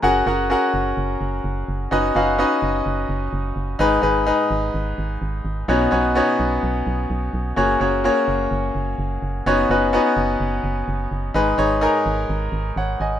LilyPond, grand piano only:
<<
  \new Staff \with { instrumentName = "Grand piano" } { \time 4/4 \key ges \major \tempo 4 = 127 <des' ges' aes' bes' ges''>8 <des' ges' aes' bes' ges''>8 <des' ges' aes' bes' ges''>2 r4 | <cis' dis' fis' b' dis''>8 <cis' dis' fis' b' f''>8 <cis' dis' fis' b' dis''>2 r4 | <ees' aes' ces''>8 <ees' aes' ces''>8 <ees' aes' ces''>2 r4 | <b cis' dis' fis' cis''>8 <b cis' dis' fis' cis''>8 <b cis' dis' fis' cis''>2 r4 |
<bes des' ges' aes' des''>8 <bes des' ges' aes' des''>8 <bes des' ges' aes' des''>2 r4 | <b cis' dis' fis' cis''>8 <b cis' dis' fis' b'>8 <b cis' dis' fis' b'>2 r4 | <ees' aes' ces''>8 <ees' aes' des''>8 <ees' aes' bes'>2 <des'' ges''>8 <ees'' aes''>8 | }
  \new Staff \with { instrumentName = "Grand piano" } { \clef bass \time 4/4 \key ges \major r1 | r1 | aes,4. r2 r8 | b,4. r2 r8 |
r1 | r1 | aes,4. r2 r8 | }
>>